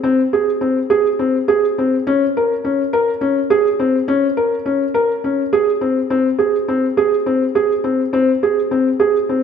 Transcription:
0.03 C4
0.33 G#4
0.61 C4
0.90 G#4
1.19 C4
1.48 G#4
1.78 C4
2.07 C#4
2.37 A#4
2.64 C#4
2.93 A#4
3.21 C#4
3.50 G#4
3.80 C4
4.08 C#4
4.37 A#4
4.66 C#4
4.94 A#4
5.24 C#4
5.53 G#4
5.81 C4
6.10 C4
6.39 G#4
6.68 C4
6.97 G#4
7.26 C4
7.55 G#4
7.84 C4
8.13 C4
8.43 G#4
8.71 C4
9.00 G#4
9.29 C4

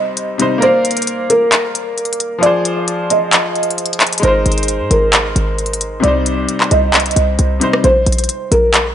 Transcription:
Already playing: C3 G3 D#4 C5 D#5
0.17 closed hi-hat
0.38 C3 G3 D#4 C5, closed hi-hat
0.58 A#3 A#4
0.62 C5 D5 F5, closed hi-hat
0.85 closed hi-hat
0.91 closed hi-hat
0.97 closed hi-hat
1.02 closed hi-hat
1.07 closed hi-hat
1.30 A#4, closed hi-hat
1.52 clap, closed hi-hat
1.75 closed hi-hat
1.98 closed hi-hat
2.05 closed hi-hat
2.13 closed hi-hat
2.20 closed hi-hat
2.38 F3 F4 D5
2.43 G#4 C5, closed hi-hat
2.65 closed hi-hat
2.88 closed hi-hat
3.10 D#5, closed hi-hat
3.33 clap, closed hi-hat
3.56 closed hi-hat
3.63 closed hi-hat
3.70 closed hi-hat
3.78 closed hi-hat
3.86 closed hi-hat
3.93 closed hi-hat
4.00 clap, closed hi-hat, open hi-hat
4.07 closed hi-hat
4.13 closed hi-hat
4.18 G#3, closed hi-hat
4.22 G#1 D#4 A#4 C5, closed hi-hat
4.27 C5
4.46 G#1, closed hi-hat
4.52 closed hi-hat
4.58 closed hi-hat
4.63 closed hi-hat
4.68 closed hi-hat
4.80 G#2
4.91 G#1 A#4, closed hi-hat
5.13 clap, closed hi-hat
5.36 G#1, closed hi-hat
5.58 closed hi-hat
5.66 closed hi-hat
5.73 closed hi-hat
5.81 closed hi-hat
6.00 C2 C3 G3 D5, closed hi-hat
6.05 D#4 C5
6.26 closed hi-hat
6.49 closed hi-hat
6.61 clap
6.71 C2 D#5, closed hi-hat
6.94 clap, closed hi-hat
7.00 closed hi-hat
7.06 closed hi-hat
7.11 closed hi-hat
7.16 C2, closed hi-hat
7.39 C2, closed hi-hat
7.60 C3 G3 D#4 C5, closed hi-hat
7.73 cross-stick
7.84 A#1 C5, closed hi-hat
8.06 A#1, closed hi-hat
8.12 closed hi-hat
8.18 closed hi-hat
8.24 closed hi-hat
8.29 closed hi-hat
8.52 A#1 A#4, closed hi-hat
8.74 clap, closed hi-hat

